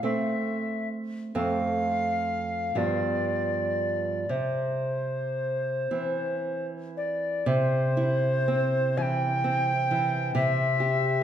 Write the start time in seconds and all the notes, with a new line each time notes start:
0.03 A3 C4 E5
1.35 F2 A3 C4 F5
2.75 G2 F3 B3 D5
4.29 C3 C5
5.91 E3 C4
6.97 D5
7.46 C3 C5
7.97 E4
8.48 C4
8.97 E3 G#5
9.02 G5
9.44 C4
9.91 E3
10.35 C3 E5
10.80 G4